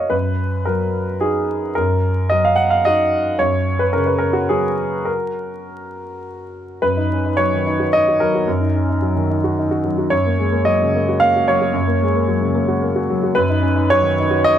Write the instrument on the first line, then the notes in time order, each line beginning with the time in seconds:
grand piano
Already playing: A#4 C#5 D#5 F5
0.10 F#2 B4
0.65 F#3 A#4
1.21 D#4 F#4 G#4
1.75 F#2 A#4
2.30 F#3 D#5
2.45 F5
2.56 F#5
2.70 F5
2.85 D#4 F#4 D#5
3.39 F#2 C#5
3.79 B4
3.93 C#3 A#4
4.06 B4
4.18 A#4
4.33 F#4
4.49 F#3 C#4 F#4 G#4
5.05 A#4
6.82 F#2 B4
6.97 D#4
7.13 C#4
7.26 D#4
7.37 F#3 C#5
7.54 D#3
7.67 D#4
7.80 F#4
7.93 D#4 D#5
8.08 F#4
8.20 F#3 A#4
8.35 F#4
8.48 F#2
8.60 D#4
8.76 C#4
8.89 D#4
9.02 F#3
9.16 D#3
9.30 D#4
9.44 F#4
9.59 D#4
9.71 F#4
9.85 F#3
9.98 F#4
10.10 F#2 C#5
10.26 A#3
10.39 G#3
10.52 A#3
10.65 F#3 D#5
10.82 C#3
10.95 A#3
11.09 F#4
11.20 A#3 F5
11.36 F#4
11.48 F#3 C#5
11.62 F#4
11.74 F#2
11.87 A#3
12.02 G#3
12.14 A#3
12.28 F#3
12.41 C#3
12.55 A#3
12.68 F#4
12.82 A#3
12.96 F#4
13.10 F#3
13.23 F#4
13.35 F#2 B4
13.50 D#4
13.62 C#4
13.76 D#4
13.90 F#3 C#5
14.02 D#3
14.19 D#4
14.31 F#4
14.44 D#4 D#5